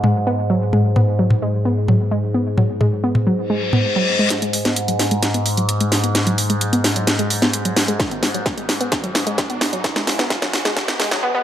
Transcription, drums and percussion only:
0.04 mid tom
0.73 mid tom
0.96 mid tom
1.30 mid tom
1.88 mid tom
2.58 mid tom
2.81 mid tom
3.15 mid tom
3.73 mid tom
4.30 snare, closed hi-hat
4.42 closed hi-hat
4.53 open hi-hat
4.65 snare, closed hi-hat
4.76 closed hi-hat
4.88 closed hi-hat
4.99 snare, open hi-hat
5.11 closed hi-hat
5.23 snare, closed hi-hat
5.34 closed hi-hat
5.46 open hi-hat
5.57 closed hi-hat
5.69 closed hi-hat
5.81 closed hi-hat
5.92 snare, open hi-hat
6.04 closed hi-hat
6.15 snare, closed hi-hat
6.27 closed hi-hat
6.38 open hi-hat
6.50 closed hi-hat
6.61 closed hi-hat
6.73 closed hi-hat
6.84 snare, open hi-hat
6.96 closed hi-hat
7.07 snare, closed hi-hat
7.19 closed hi-hat
7.30 open hi-hat
7.42 snare, closed hi-hat
7.53 closed hi-hat
7.65 closed hi-hat
7.76 snare, open hi-hat
7.88 closed hi-hat
8.00 kick, snare, closed hi-hat
8.11 closed hi-hat
8.23 snare, open hi-hat
8.34 closed hi-hat
8.46 kick, snare, closed hi-hat
8.58 closed hi-hat
8.69 snare, open hi-hat
8.81 closed hi-hat
8.92 kick, snare, closed hi-hat
9.04 closed hi-hat
9.15 snare, open hi-hat
9.27 closed hi-hat
9.38 kick, snare, closed hi-hat
9.50 closed hi-hat
9.61 snare, open hi-hat
9.73 closed hi-hat
9.84 kick, snare, closed hi-hat
9.96 snare, closed hi-hat
10.07 snare, open hi-hat
10.19 snare, closed hi-hat
10.30 kick, snare, closed hi-hat
10.42 snare, closed hi-hat
10.53 snare, open hi-hat
10.65 snare, closed hi-hat
10.77 kick, snare, closed hi-hat
10.88 snare, closed hi-hat
11.00 snare, open hi-hat
11.11 snare, closed hi-hat

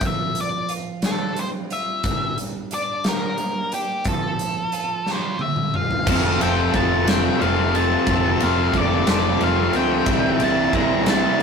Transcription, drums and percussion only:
0.01 kick, closed hi-hat
0.35 closed hi-hat
0.69 closed hi-hat
1.02 snare, closed hi-hat
1.36 closed hi-hat
1.70 closed hi-hat
2.04 kick, closed hi-hat
2.38 closed hi-hat
2.71 closed hi-hat
3.04 snare, closed hi-hat
3.38 closed hi-hat
3.72 closed hi-hat
4.04 kick, closed hi-hat
4.39 closed hi-hat
4.72 closed hi-hat
5.06 snare
5.39 high tom
5.56 mid tom
5.74 mid tom
5.91 floor tom
6.07 kick, crash
6.41 ride
6.74 kick, ride
7.07 snare, ride
7.41 ride
7.75 ride
8.06 kick, ride
8.40 ride
8.74 kick, ride
9.07 snare, ride
9.41 ride
9.73 ride
10.06 kick, ride
10.40 ride
10.73 kick, ride
11.06 snare, ride

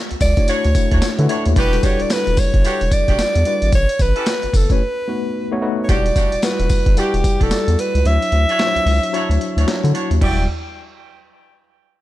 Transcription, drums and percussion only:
0.11 closed hi-hat
0.21 kick, open hi-hat, tambourine
0.37 kick, closed hi-hat
0.48 closed hi-hat, tambourine
0.64 closed hi-hat
0.75 kick, closed hi-hat, tambourine
0.91 kick, closed hi-hat
1.02 snare, closed hi-hat, tambourine
1.19 closed hi-hat
1.29 closed hi-hat
1.45 closed hi-hat
1.56 kick, closed hi-hat, tambourine
1.73 closed hi-hat
1.83 kick, closed hi-hat, tambourine
2.00 closed hi-hat
2.10 snare, closed hi-hat, tambourine
2.27 closed hi-hat
2.37 kick, open hi-hat, tambourine
2.54 kick, closed hi-hat
2.64 closed hi-hat, tambourine
2.81 closed hi-hat
2.91 kick, closed hi-hat, tambourine
3.08 kick, closed hi-hat
3.19 snare, closed hi-hat, tambourine
3.35 closed hi-hat
3.45 closed hi-hat
3.62 closed hi-hat
3.72 kick, closed hi-hat, tambourine
3.89 closed hi-hat
3.99 kick, closed hi-hat, tambourine
4.16 closed hi-hat
4.26 snare, closed hi-hat, tambourine
4.43 closed hi-hat
4.54 kick, open hi-hat, tambourine
4.70 kick, closed hi-hat
5.89 kick, closed hi-hat, tambourine
6.06 closed hi-hat
6.16 kick, closed hi-hat, tambourine
6.32 closed hi-hat
6.42 snare, closed hi-hat, tambourine
6.59 closed hi-hat
6.69 kick, open hi-hat, tambourine
6.86 kick, closed hi-hat
6.97 closed hi-hat, tambourine
7.14 closed hi-hat
7.24 kick, closed hi-hat, tambourine
7.41 kick, closed hi-hat
7.51 snare, closed hi-hat, tambourine
7.68 closed hi-hat
7.79 closed hi-hat
7.95 closed hi-hat
8.05 closed hi-hat
8.22 closed hi-hat
8.32 closed hi-hat
8.49 closed hi-hat
8.59 snare, closed hi-hat
8.76 closed hi-hat
8.87 open hi-hat
9.03 closed hi-hat
9.14 closed hi-hat
9.31 closed hi-hat
9.41 closed hi-hat
9.58 closed hi-hat
9.68 snare, closed hi-hat
9.85 closed hi-hat
9.95 closed hi-hat
10.11 closed hi-hat
10.21 kick, floor tom, crash

